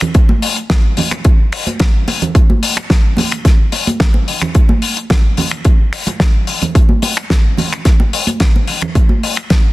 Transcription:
0.01 finger snap medium
0.01 closed hi-hat medium
0.01 low conga medium
0.14 kick loud
0.14 closed hi-hat medium
0.14 muted conga medium
0.29 high conga loud
0.42 open hi-hat loud
0.56 closed hi-hat medium
0.70 kick loud
0.70 snare loud
0.70 closed hi-hat medium
0.70 muted conga soft
0.97 open hi-hat medium
0.97 high conga medium
0.97 low conga medium
1.11 finger snap medium
1.11 closed hi-hat medium
1.11 muted conga medium
1.24 kick loud
1.24 closed hi-hat medium
1.52 finger snap medium
1.52 open hi-hat loud
1.66 closed hi-hat medium
1.66 muted conga soft
1.66 high conga medium
1.79 kick loud
1.79 snare loud
1.79 closed hi-hat medium
2.08 open hi-hat medium
2.08 muted conga medium
2.22 closed hi-hat medium
2.22 low conga medium
2.35 kick loud
2.35 closed hi-hat medium
2.50 high conga medium
2.63 open hi-hat loud
2.77 finger snap medium
2.77 closed hi-hat medium
2.77 muted conga medium
2.90 kick loud
2.90 snare loud
2.90 closed hi-hat medium
3.17 open hi-hat medium
3.17 muted conga medium
3.17 high conga medium
3.17 low conga medium
3.31 finger snap medium
3.31 closed hi-hat medium
3.45 kick loud
3.45 snare soft
3.45 closed hi-hat medium
3.72 open hi-hat loud
3.72 muted conga soft
3.87 closed hi-hat medium
3.87 high conga medium
4.00 kick loud
4.00 snare loud
4.00 closed hi-hat medium
4.14 muted conga medium
4.28 open hi-hat loud
4.42 finger snap medium
4.42 closed hi-hat medium
4.42 low conga medium
4.55 kick loud
4.55 closed hi-hat medium
4.69 muted conga medium
4.69 high conga medium
4.82 open hi-hat loud
4.97 closed hi-hat medium
5.10 kick loud
5.10 snare loud
5.10 closed hi-hat medium
5.10 muted conga medium
5.37 open hi-hat medium
5.37 high conga medium
5.37 low conga medium
5.51 finger snap medium
5.51 closed hi-hat medium
5.65 kick loud
5.65 closed hi-hat medium
5.65 muted conga medium
5.93 finger snap medium
5.93 open hi-hat loud
6.07 closed hi-hat medium
6.07 muted conga medium
6.07 high conga medium
6.20 kick loud
6.20 snare loud
6.20 closed hi-hat medium
6.47 open hi-hat loud
6.62 closed hi-hat medium
6.62 muted conga medium
6.62 low conga medium
6.75 kick loud
6.75 closed hi-hat medium
6.89 high conga medium
7.02 open hi-hat loud
7.02 muted conga medium
7.17 finger snap medium
7.17 closed hi-hat medium
7.30 kick loud
7.30 snare loud
7.30 closed hi-hat medium
7.57 open hi-hat medium
7.57 muted conga medium
7.57 high conga medium
7.57 low conga medium
7.73 finger snap medium
7.73 closed hi-hat medium
7.85 kick loud
7.85 snare soft
7.85 closed hi-hat medium
8.00 muted conga medium
8.13 open hi-hat loud
8.27 closed hi-hat medium
8.27 high conga medium
8.40 kick loud
8.40 snare loud
8.40 closed hi-hat medium
8.56 muted conga medium
8.67 open hi-hat medium
8.82 finger snap medium
8.82 closed hi-hat medium
8.82 low conga medium
8.95 kick loud
8.95 closed hi-hat medium
8.95 muted conga medium
9.09 high conga medium
9.23 open hi-hat loud
9.36 finger snap medium
9.36 closed hi-hat medium
9.50 kick loud
9.50 snare loud
9.50 closed hi-hat medium
9.50 muted conga medium

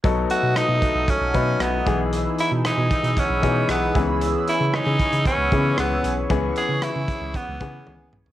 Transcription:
0.03 0.24 B1 medium
0.03 0.75 F#3 medium
0.03 1.07 F#3 medium
0.03 0.76 B3 medium
0.03 0.76 D#4 medium
0.03 1.85 A4 medium
0.03 0.76 A4 medium
0.03 1.85 F#5 medium
0.03 6.00 B5 medium
0.03 1.85 D#6 medium
0.03 kick loud
0.03 closed hi-hat medium
0.30 0.81 A3 medium
0.30 0.59 F#4 loud
0.30 closed hi-hat medium
0.43 0.53 B2 medium
0.56 1.60 D#4 medium
0.56 1.11 D#4 medium
0.56 cross-stick loud
0.56 closed hi-hat medium
0.69 0.79 B2 medium
0.82 1.33 A3 medium
0.82 kick medium
0.82 closed hi-hat medium
0.95 1.05 B1 medium
1.08 1.86 F#3 medium
1.08 1.63 C#4 medium
1.08 kick medium
1.08 closed hi-hat medium
1.21 1.31 B1 medium
1.34 1.54 B2 medium
1.34 1.86 F#3 medium
1.34 1.92 A3 medium
1.34 1.85 B3 medium
1.34 1.85 D#4 medium
1.34 1.87 B4 medium
1.34 kick medium
1.34 closed hi-hat medium
1.60 1.80 B1 medium
1.60 2.00 B3 medium
1.60 1.74 C#4 medium
1.60 cross-stick medium
1.60 closed hi-hat medium
1.74 1.92 D#4 medium
1.86 2.26 B1 medium
1.86 2.70 E3 medium
1.86 2.12 E3 medium
1.86 2.70 B3 medium
1.86 3.93 D#4 medium
1.86 2.70 D#4 medium
1.86 8.32 G#4 medium
1.86 2.71 G#4 medium
1.86 8.32 E6 medium
1.86 kick loud
1.86 closed hi-hat medium
2.12 3.95 E3 medium
2.12 closed hi-hat medium
2.39 2.52 C#4 medium
2.39 2.52 E4 loud
2.39 closed hi-hat medium
2.52 2.62 B2 medium
2.52 2.90 D#4 soft
2.65 3.20 D#4 medium
2.65 3.69 G#4 medium
2.65 cross-stick loud
2.65 closed hi-hat medium
2.78 2.88 B2 medium
2.91 3.42 D#4 medium
2.91 kick medium
2.91 closed hi-hat medium
3.04 3.14 B2 medium
3.04 closed hi-hat medium
3.17 4.51 B3 medium
3.17 3.70 C#4 medium
3.17 kick medium
3.17 closed hi-hat medium
3.30 3.40 B1 medium
3.42 3.63 B2 medium
3.42 3.93 E3 medium
3.42 3.94 B3 medium
3.42 3.95 D#4 medium
3.42 4.01 D#4 medium
3.42 3.94 G#4 medium
3.42 kick medium
3.42 closed hi-hat medium
3.69 3.89 B1 medium
3.69 4.07 B3 medium
3.69 4.73 G#4 medium
3.69 cross-stick medium
3.69 closed hi-hat medium
3.95 4.34 C#2 medium
3.95 4.79 E3 medium
3.95 4.21 E3 medium
3.95 4.79 B3 medium
3.95 4.79 C#4 medium
3.95 4.79 G#4 medium
3.95 8.32 C#5 medium
3.95 kick loud
3.95 closed hi-hat medium
4.21 6.30 E3 medium
4.21 closed hi-hat medium
4.47 5.00 C#4 medium
4.47 4.77 E4 loud
4.47 closed hi-hat medium
4.60 4.70 C#3 medium
4.74 5.27 D#4 loud
4.74 5.78 G#4 medium
4.74 cross-stick loud
4.74 closed hi-hat medium
4.86 4.96 C#3 medium
4.99 5.51 C#4 medium
4.99 kick medium
4.99 closed hi-hat medium
5.12 5.22 C#3 medium
5.12 closed hi-hat medium
5.25 6.56 B3 medium
5.25 5.75 C#4 medium
5.25 kick medium
5.25 closed hi-hat medium
5.38 5.48 C#2 medium
5.52 5.72 C#3 medium
5.52 6.05 E3 medium
5.52 6.06 B3 medium
5.52 6.04 C#4 medium
5.52 6.06 C#4 medium
5.52 6.06 G#4 medium
5.52 kick medium
5.52 closed hi-hat medium
5.78 5.97 C#2 medium
5.78 6.15 B3 medium
5.78 6.82 G#4 medium
5.78 cross-stick medium
5.78 closed hi-hat medium
6.04 6.23 B1 medium
6.04 6.56 C#4 medium
6.04 8.32 C#6 medium
6.04 closed hi-hat medium
6.30 6.50 C#2 loud
6.30 7.02 E3 medium
6.30 8.32 E3 medium
6.30 7.02 B3 medium
6.30 7.02 C#4 medium
6.30 7.02 G#4 medium
6.30 kick loud
6.30 closed hi-hat medium
6.56 6.69 B3 medium
6.56 6.85 G#4 loud
6.56 closed hi-hat medium
6.69 6.79 C#3 medium
6.69 7.07 C#4 soft
6.82 7.38 E4 medium
6.82 7.86 G#4 medium
6.82 cross-stick loud
6.82 closed hi-hat medium
6.96 7.05 C#3 medium
7.08 7.60 C#4 medium
7.08 kick medium
7.08 closed hi-hat medium
7.22 7.31 C#2 medium
7.34 7.61 B3 medium
7.34 8.14 B3 medium
7.34 kick medium
7.34 closed hi-hat medium
7.48 7.58 C#2 medium
7.60 7.80 C#3 medium
7.60 8.14 E3 medium
7.60 8.14 B3 medium
7.60 7.74 B3 medium
7.60 8.15 C#4 medium
7.60 8.15 G#4 medium
7.60 kick medium
7.60 closed hi-hat medium
7.74 8.12 C#4 soft
7.87 8.06 C#2 medium
7.87 8.32 G#4 medium
7.87 high tom medium
8.13 8.32 B1 medium
8.13 8.32 C#4 medium
8.13 mid tom medium
8.26 floor tom medium

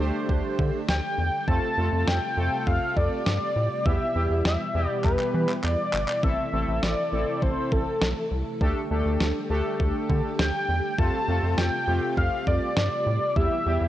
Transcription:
0.00 0.12 D2 loud
0.00 1.46 D3 medium
0.00 3.82 G3 medium
0.00 0.81 A3 medium
0.00 3.82 A3 medium
0.00 0.81 D4 medium
0.00 0.81 G4 medium
0.00 1.46 G4 medium
0.00 1.44 A4 medium
0.00 0.81 C5 loud
0.29 0.41 D2 medium
0.29 kick medium
0.59 0.71 D3 medium
0.59 kick medium
0.89 1.01 D2 loud
0.89 1.49 G5 loud
0.89 snare loud
1.18 1.31 E2 medium
1.48 1.60 F2 loud
1.48 3.83 C3 medium
1.48 1.68 A3 medium
1.48 1.68 C4 medium
1.48 1.68 F4 medium
1.48 3.83 F4 medium
1.48 6.19 G4 medium
1.48 1.68 A4 medium
1.48 2.09 A5 loud
1.48 kick loud
1.78 1.90 F2 medium
1.78 2.18 A3 medium
1.78 2.18 C4 medium
1.78 2.18 F4 medium
1.78 2.18 A4 medium
1.93 2.05 F2 loud
2.07 2.20 F2 medium
2.07 2.68 G5 loud
2.07 snare loud
2.37 2.49 F2 medium
2.37 3.18 A3 medium
2.37 3.18 C4 medium
2.37 3.18 F4 medium
2.37 3.18 A4 medium
2.67 2.79 F2 loud
2.67 2.98 F5 loud
2.67 kick medium
2.96 3.09 F2 loud
2.96 3.26 D5 medium
2.96 kick medium
3.26 3.38 G2 medium
3.26 3.87 D5 loud
3.26 snare loud
3.56 3.68 A2 medium
3.86 3.98 E2 loud
3.86 6.21 B2 medium
3.86 8.57 E3 medium
3.86 4.06 G3 medium
3.86 6.21 G3 medium
3.86 4.06 B3 medium
3.86 4.06 E4 medium
3.86 8.57 E4 medium
3.86 4.06 G4 medium
3.86 4.44 E5 loud
3.86 kick loud
4.15 4.28 E2 medium
4.15 4.56 G3 medium
4.15 4.56 B3 medium
4.15 4.56 E4 medium
4.15 4.56 G4 medium
4.30 4.42 E2 loud
4.45 4.57 E2 medium
4.45 4.88 E5 loud
4.45 snare loud
4.75 4.87 E2 loud
4.75 5.56 G3 medium
4.75 5.56 B3 medium
4.75 5.56 E4 medium
4.75 5.56 G4 medium
4.88 5.00 D5 loud
5.04 5.17 E2 medium
5.04 5.60 B4 medium
5.04 kick medium
5.04 clap medium
5.19 clap medium
5.34 5.46 E3 medium
5.49 clap medium
5.64 5.76 E2 loud
5.64 6.25 D5 loud
5.64 clap medium
5.93 6.06 G1 medium
5.93 clap loud
6.08 clap medium
6.23 6.35 A1 loud
6.23 8.58 C3 medium
6.23 8.58 A3 medium
6.23 6.44 A3 medium
6.23 6.44 C4 medium
6.23 6.44 E4 medium
6.23 6.44 A4 medium
6.23 10.94 A4 medium
6.23 6.84 E5 loud
6.23 kick loud
6.53 6.65 A1 loud
6.53 6.94 A3 medium
6.53 6.94 C4 medium
6.53 6.94 E4 medium
6.53 6.94 A4 medium
6.68 6.80 A1 medium
6.83 6.95 A1 loud
6.83 7.44 D5 medium
6.83 snare loud
7.12 7.25 A1 loud
7.12 7.94 A3 medium
7.12 7.94 C4 medium
7.12 7.94 E4 medium
7.12 7.94 A4 medium
7.42 7.54 A1 loud
7.42 7.73 C5 medium
7.42 kick medium
7.72 7.84 A1 medium
7.72 8.31 A4 medium
7.72 kick medium
8.01 8.14 B1 loud
8.01 snare loud
8.31 8.43 C2 medium
8.61 8.73 D2 loud
8.61 10.96 D3 medium
8.61 13.32 G3 medium
8.61 8.81 A3 medium
8.61 13.32 A3 medium
8.61 8.81 D4 medium
8.61 8.81 G4 medium
8.61 13.32 G4 medium
8.61 8.81 A4 loud
8.61 kick loud
8.91 9.03 D2 loud
8.91 9.31 A3 medium
8.91 9.31 D4 medium
8.91 9.31 G4 medium
8.91 9.31 A4 loud
9.05 9.18 D2 loud
9.20 9.32 D2 medium
9.20 snare loud
9.50 9.62 D2 loud
9.50 10.31 A3 medium
9.50 10.31 D4 medium
9.50 10.31 G4 medium
9.50 10.31 A4 loud
9.80 9.92 D2 medium
9.80 kick medium
10.09 10.22 D3 loud
10.09 kick medium
10.39 10.51 D2 loud
10.39 11.00 G5 loud
10.39 snare loud
10.69 10.81 E2 medium
10.98 11.11 F2 loud
10.98 13.34 C3 medium
10.98 11.19 A3 medium
10.98 11.19 C4 medium
10.98 11.19 F4 medium
10.98 13.34 F4 medium
10.98 11.19 A4 medium
10.98 11.57 A5 loud
10.98 kick loud
11.28 11.40 F2 loud
11.28 11.69 A3 medium
11.28 11.69 C4 medium
11.28 11.69 F4 medium
11.28 11.69 A4 medium
11.43 11.55 F2 loud
11.58 11.70 F2 medium
11.58 12.13 G5 loud
11.58 snare loud
11.87 12.00 F2 medium
11.87 12.69 A3 medium
11.87 12.69 C4 medium
11.87 12.69 F4 medium
11.87 12.69 G4 medium
12.17 12.30 F2 loud
12.17 12.45 F5 loud
12.17 kick medium
12.47 12.59 F2 loud
12.47 12.75 D5 loud
12.47 kick medium
12.77 12.89 G2 medium
12.77 13.38 D5 loud
12.77 snare loud
13.07 13.19 A2 medium
13.36 13.48 E2 loud
13.36 13.88 B2 medium
13.36 13.88 E3 medium
13.36 13.57 G3 medium
13.36 13.88 G3 medium
13.36 13.56 B3 medium
13.36 13.56 E4 medium
13.36 13.88 E4 medium
13.36 13.56 G4 medium
13.36 13.88 G4 medium
13.36 13.88 E5 loud
13.36 kick loud
13.66 13.78 E2 loud
13.66 13.88 G3 medium
13.66 13.88 B3 medium
13.66 13.88 E4 medium
13.66 13.88 G4 medium
13.81 13.88 E2 loud

